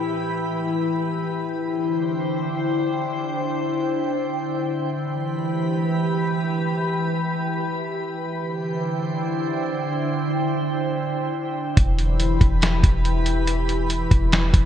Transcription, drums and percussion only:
11.77 kick, closed hi-hat
11.99 closed hi-hat
12.20 closed hi-hat
12.41 kick, closed hi-hat
12.62 snare, closed hi-hat
12.83 kick, closed hi-hat
13.05 closed hi-hat
13.26 closed hi-hat
13.47 closed hi-hat
13.69 closed hi-hat
13.90 closed hi-hat
14.11 kick, closed hi-hat
14.32 snare, closed hi-hat
14.54 kick, closed hi-hat

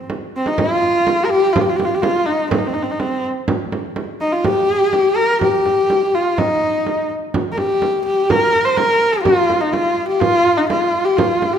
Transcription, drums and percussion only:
0.10 frame drum
0.46 frame drum
0.58 frame drum
0.83 frame drum
1.07 frame drum
1.31 frame drum
1.56 frame drum
1.80 frame drum
2.03 frame drum
2.27 frame drum
2.51 frame drum
2.75 frame drum
3.00 frame drum
3.24 frame drum
3.48 frame drum
3.72 frame drum
3.96 frame drum
4.21 frame drum
4.44 frame drum
4.93 frame drum
5.18 frame drum
5.41 frame drum
5.66 frame drum
5.90 frame drum
6.14 frame drum
6.38 frame drum
6.62 frame drum
6.87 frame drum
7.10 frame drum
7.34 frame drum
7.58 frame drum
7.82 frame drum
8.06 frame drum
8.30 frame drum
8.54 frame drum
8.77 frame drum
9.02 frame drum
9.25 frame drum
9.50 frame drum
9.73 frame drum
9.98 frame drum
10.21 frame drum
10.46 frame drum
10.70 frame drum
10.94 frame drum
11.18 frame drum
11.42 frame drum

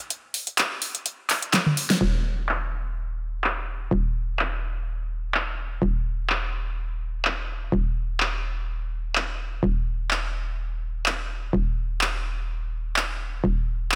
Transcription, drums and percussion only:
0.10 closed hi-hat
0.34 open hi-hat
0.47 closed hi-hat
0.58 clap, closed hi-hat
0.82 open hi-hat
0.95 closed hi-hat
1.06 closed hi-hat
1.29 clap, open hi-hat
1.42 closed hi-hat
1.53 snare, clap, closed hi-hat
1.66 high tom
1.77 open hi-hat
1.90 snare, open hi-hat
2.49 clap
3.44 clap
4.39 clap
5.34 clap
6.30 clap
7.25 clap
8.20 clap
9.15 clap
10.11 clap
11.06 clap
12.01 clap
12.96 clap
13.92 clap

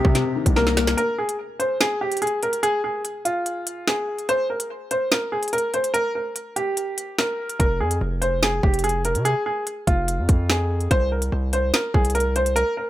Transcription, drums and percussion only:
0.05 kick
0.15 snare, closed hi-hat
0.46 kick, closed hi-hat
0.56 snare
0.67 snare
0.77 snare, closed hi-hat
0.87 snare, closed hi-hat
0.98 closed hi-hat
1.29 closed hi-hat
1.60 closed hi-hat
1.81 snare
2.12 closed hi-hat
2.17 closed hi-hat
2.22 closed hi-hat
2.27 closed hi-hat
2.43 closed hi-hat
2.53 closed hi-hat
2.63 closed hi-hat
3.05 closed hi-hat
3.25 closed hi-hat
3.46 closed hi-hat
3.67 closed hi-hat
3.88 snare
4.18 closed hi-hat
4.29 closed hi-hat
4.60 closed hi-hat
4.91 closed hi-hat
5.12 snare
5.43 closed hi-hat
5.48 closed hi-hat
5.53 closed hi-hat
5.58 closed hi-hat
5.74 closed hi-hat
5.84 closed hi-hat
5.94 closed hi-hat
6.36 closed hi-hat
6.56 closed hi-hat
6.77 closed hi-hat
6.98 closed hi-hat
7.18 snare
7.49 closed hi-hat
7.60 kick, closed hi-hat
7.91 closed hi-hat
8.22 closed hi-hat
8.43 snare
8.63 kick
8.74 closed hi-hat
8.79 closed hi-hat
8.84 closed hi-hat
8.89 closed hi-hat
9.05 closed hi-hat
9.15 closed hi-hat
9.25 closed hi-hat
9.67 closed hi-hat
9.87 kick, closed hi-hat
10.08 closed hi-hat
10.29 kick, closed hi-hat
10.50 snare
10.81 closed hi-hat
10.91 kick, closed hi-hat
11.22 closed hi-hat
11.53 closed hi-hat
11.74 snare
11.94 kick
12.05 closed hi-hat
12.10 closed hi-hat
12.15 closed hi-hat
12.20 closed hi-hat
12.36 closed hi-hat
12.46 closed hi-hat
12.56 closed hi-hat

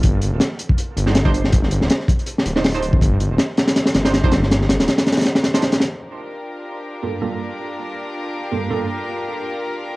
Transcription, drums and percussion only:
0.03 kick, closed hi-hat
0.22 closed hi-hat
0.40 snare, closed hi-hat
0.59 closed hi-hat
0.70 kick
0.78 closed hi-hat
0.97 closed hi-hat
1.07 snare
1.15 snare, closed hi-hat
1.25 kick
1.34 closed hi-hat
1.44 snare
1.52 kick, closed hi-hat
1.63 snare
1.71 closed hi-hat
1.81 snare
1.90 snare, closed hi-hat
2.00 snare
2.08 kick, closed hi-hat
2.19 closed hi-hat
2.26 closed hi-hat
2.38 snare
2.46 closed hi-hat
2.56 snare
2.64 snare, open hi-hat
2.75 closed hi-hat
2.82 closed hi-hat
2.93 kick
3.01 kick, closed hi-hat
3.20 closed hi-hat
3.38 snare, closed hi-hat
3.57 snare, closed hi-hat
3.68 snare, closed hi-hat
3.76 snare, closed hi-hat
3.86 snare, closed hi-hat
3.94 snare, closed hi-hat
4.05 snare, closed hi-hat
4.14 snare, closed hi-hat
4.24 kick
4.31 snare, closed hi-hat
4.43 snare
4.51 snare, closed hi-hat
4.61 snare
4.69 snare, closed hi-hat
4.80 snare, closed hi-hat
4.88 snare, closed hi-hat
4.98 snare, closed hi-hat
5.07 snare, closed hi-hat
5.12 snare, closed hi-hat
5.17 snare, closed hi-hat
5.21 snare, closed hi-hat
5.25 snare, closed hi-hat
5.35 snare, closed hi-hat
5.44 snare, closed hi-hat
5.54 snare, closed hi-hat
5.62 snare, closed hi-hat
5.72 snare, closed hi-hat
5.80 snare, closed hi-hat

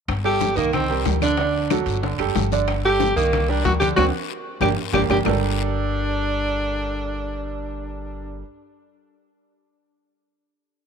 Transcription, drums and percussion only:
0.09 high bongo, high conga, high timbale, long guiro, claves
0.25 high conga
0.40 high bongo, high conga, high timbale, short guiro
0.56 high bongo, high conga, short guiro
0.73 high bongo, high conga, low conga, high timbale, long guiro, claves
0.89 high bongo, high conga
1.06 high bongo, low bongo, high conga, high timbale, low timbale, short guiro
1.21 high bongo, high conga, high timbale, short guiro, claves
1.37 high bongo, high conga, high timbale, long guiro
1.54 high bongo, high conga
1.70 high bongo, high conga, high timbale, short guiro, claves
1.86 high conga, high timbale, short guiro
2.03 high bongo, high conga, long guiro
2.19 high bongo, high conga, high timbale, claves
2.35 high bongo, low bongo, high conga, high timbale, short guiro
2.52 high bongo, high conga, short guiro
2.68 high bongo, high conga, high timbale, long guiro, claves
2.85 high conga
3.00 high bongo, high conga, high timbale, short guiro
3.16 high bongo, high conga, short guiro
3.33 high bongo, high conga, low conga, high timbale, long guiro, claves
3.49 high bongo, high conga
3.65 high bongo, low bongo, high conga, high timbale, short guiro
3.81 high bongo, high conga, high timbale, short guiro, claves
3.97 low bongo, high conga, high timbale, long guiro, claves
4.61 low bongo, high conga, high timbale, long guiro, claves
4.93 low bongo, high conga, high timbale, long guiro, claves
5.10 low bongo, high conga, high timbale, long guiro, claves
5.25 low bongo, low conga, low timbale, long guiro, claves

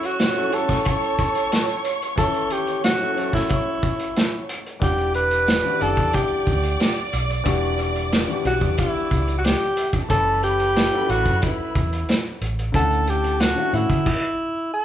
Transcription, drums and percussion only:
0.03 closed hi-hat
0.19 snare, closed hi-hat
0.52 closed hi-hat
0.69 kick, snare, closed hi-hat
0.85 kick, closed hi-hat
1.01 closed hi-hat
1.19 kick, closed hi-hat
1.35 closed hi-hat
1.52 snare, closed hi-hat
1.69 closed hi-hat
1.84 closed hi-hat
2.02 closed hi-hat
2.18 kick, closed hi-hat
2.34 closed hi-hat
2.50 closed hi-hat
2.67 closed hi-hat
2.84 snare, closed hi-hat
3.17 closed hi-hat
3.33 kick, snare, closed hi-hat
3.49 kick, closed hi-hat
3.83 kick, closed hi-hat
3.99 closed hi-hat
4.16 snare, closed hi-hat
4.49 closed hi-hat
4.66 closed hi-hat
4.82 kick, closed hi-hat
4.98 closed hi-hat
5.14 closed hi-hat
5.31 closed hi-hat
5.48 snare, closed hi-hat
5.81 closed hi-hat
5.97 kick, closed hi-hat
6.13 kick, closed hi-hat
6.47 kick, closed hi-hat
6.63 closed hi-hat
6.80 snare, closed hi-hat
7.13 closed hi-hat
7.30 closed hi-hat
7.46 kick, closed hi-hat
7.78 closed hi-hat
7.95 closed hi-hat
8.12 snare, closed hi-hat
8.29 closed hi-hat
8.45 closed hi-hat
8.61 kick, closed hi-hat
8.78 kick, closed hi-hat
9.11 kick, closed hi-hat
9.27 closed hi-hat
9.44 snare, closed hi-hat
9.77 closed hi-hat
9.93 kick, closed hi-hat
10.10 kick, closed hi-hat
10.43 closed hi-hat
10.59 closed hi-hat
10.76 snare, closed hi-hat
11.09 closed hi-hat
11.26 kick, closed hi-hat
11.42 kick, closed hi-hat
11.75 kick, closed hi-hat
11.93 closed hi-hat
12.09 snare, closed hi-hat
12.26 closed hi-hat
12.41 closed hi-hat
12.59 closed hi-hat
12.74 kick, closed hi-hat
12.91 closed hi-hat
13.07 closed hi-hat
13.24 closed hi-hat
13.40 snare, closed hi-hat
13.73 closed hi-hat
13.90 kick, closed hi-hat
14.06 kick, crash

